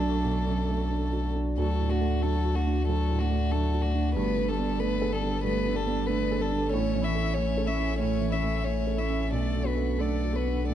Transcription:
Already playing: B1 F#2 F#3 A3 D4 F#4 A4 D5
0.02 D4
0.23 B1
0.45 F#2
0.69 A3
0.91 D4
1.12 F#4
1.35 D4
1.56 D2 F#3 A3 F#4 A4
1.79 A2
1.89 A3 D4 F#4
2.01 A3
2.22 F#3 D4 F#4 A4
2.44 F#4
2.55 A3 D4 F#4
2.67 D4
2.87 D2 F#3 F#4 A4
3.10 A2
3.19 A3 D4 F#4
3.31 A3
3.51 F#3 D4 F#4 A4
3.74 F#4
3.82 D4 F#4
3.86 A3
3.94 D4
4.14 G1 G2 A3 B3 A4 B4 D5
4.37 D3
4.48 G3 D4 A4
4.59 B3
4.79 A3 B3 D4 B4
5.02 A4
5.12 G3 D4 A4
5.22 D4
5.43 G2 A3 B3 B4
5.65 D3
5.75 G3 D4 A4
5.86 B3
6.07 A3 B3 D4 B4
6.31 A4
6.38 G3 D4 A4
6.51 D4
6.70 A1 A2 A3 C#4 C#5 E5
6.95 E3
7.01 C#4 E4 E5
7.15 A3
7.34 A3 C#4 C#5
7.57 A4
7.66 C#4 E4 E5
7.77 C#4
7.99 A2 A3 C#4 C#5
8.20 E3
8.30 C#4 E4 E5
8.43 A3
8.63 A3 C#4 C#5
8.87 A4
8.97 C#4 E4 E5
9.10 C#4
9.30 B1 A3 D4 A4 D5 F#5
9.55 F#2
9.65 B3 F#4 B4
9.77 A3
9.99 A3 D4 A4 D5
10.24 F#4
10.33 B3 F#4 B4
10.47 D4
10.66 B1 A3 A4 D5

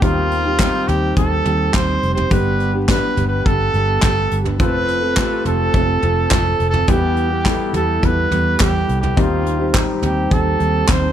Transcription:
0.01 D#2 D#3 G3 C4 D#4 F4 G4, kick, closed hi-hat
0.31 closed hi-hat
0.45 C4 D#4 G4
0.59 G3 C4 D#4 G4, kick, snare, clap, closed hi-hat
0.87 D#2 G3 C4 D#4 G4, closed hi-hat, floor tom
1.16 D#2 A4, kick, closed hi-hat
1.44 D#2 G3 C4 D#4 G4, closed hi-hat, floor tom
1.73 D#2 G3 C4 D#4 G4 C5, kick, snare, clap, closed hi-hat
2.03 F1, closed hi-hat
2.14 D#4 G4 C5, floor tom
2.19 C4
2.30 G1 G2 D3 G3 B3 D4 G4 B4, kick, closed hi-hat
2.60 closed hi-hat
2.73 G3 B3 D4 G4
2.88 G3 B3 D4 G4 B4, kick, snare, clap, closed hi-hat
3.16 G1 G3 B3 D4 G4, closed hi-hat, floor tom
3.27 B4
3.46 G1 A4, kick, closed hi-hat
3.73 G1 G3 B3 D4 G4, closed hi-hat
4.02 G1 G3 B3 D4 G4 A4, kick, snare, clap, closed hi-hat
4.31 G1, closed hi-hat
4.44 G3 B3 D4 G4, floor tom
4.59 F1 F3 A3 C4 F4 A4 B4, kick, closed hi-hat
4.88 closed hi-hat
5.02 C4 F4 A4
5.17 A3 C4 F4 G4, kick, snare, clap
5.24 A4
5.45 F1 F3 C4 F4 A4, closed hi-hat, floor tom
5.73 F1, kick, closed hi-hat
6.02 F1 F3 C4 F4 A4, closed hi-hat, floor tom
6.30 F1 F3 C4 F4 A4, kick, snare, clap, closed hi-hat
6.60 F1, closed hi-hat
6.70 A4, floor tom
6.75 C4 F4
6.87 E2 E3 G3 B3 E4 G4, kick, closed hi-hat
7.16 closed hi-hat
7.30 B3 E4 G4
7.45 G3 B3 E4 A4, kick, snare, clap, closed hi-hat
7.73 E2 G3 B3 E4 G4 A4, closed hi-hat, floor tom
8.02 E2 B4, kick, closed hi-hat
8.30 E2 G3 B3 E4 G4, closed hi-hat, floor tom
8.59 E2 G3 B3 E4 G4, kick, snare, clap, closed hi-hat
8.89 C2, closed hi-hat
9.01 B3 E4 G4, floor tom
9.16 D#2 D#3 G3 C4 D#4 F4 G4, kick, closed hi-hat
9.46 closed hi-hat
9.59 C4 D#4 G4
9.74 G3 C4 D#4 G4, kick, snare, clap, closed hi-hat
10.02 D#2 G3 C4 D#4 G4, closed hi-hat, floor tom
10.31 D#2 A4, kick, closed hi-hat
10.59 D#2 G3 C4 D#4 G4, closed hi-hat
10.88 D#2 G3 C4 D#4 G4 C5, kick, snare, clap, closed hi-hat

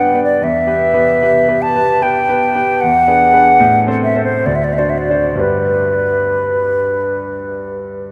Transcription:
Already playing: B3 D4 B4 F#5
0.14 B3 D4 B4
0.24 D5
0.42 E2 E5
0.67 B3 G4 B4
0.93 B3 G4 B4
1.22 B3 G4 B4
1.48 B3 G4 B4
1.62 A5
1.75 B3 G4 B4
2.01 B3 G4 B4 G5
2.29 B3 G4 B4
2.55 B3 G4 B4
2.81 E2 F#5
3.07 D4 G#4 B4
3.33 D4 G#4 B4
3.60 A2
3.87 C4 A4 C5
4.04 E5
4.16 C4 A4 C5
4.24 C5
4.46 D2 D5
4.55 E5
4.64 D5
4.73 E5
4.78 D4 F#4 C5 D5
4.90 E5
4.98 D5
5.10 D4 F#4 C5
5.35 G2 D4 G4 B4
5.40 B4

